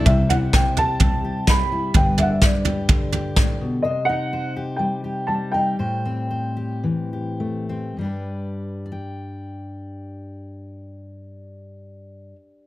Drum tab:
SD |--o---o-|--o---o-|--------|--------|
FT |oo-oo---|oo-ooo--|--------|--------|
BD |o-o-o-o-|o-o-o-o-|--------|--------|

SD |--------|--------|
FT |--------|--------|
BD |--------|--------|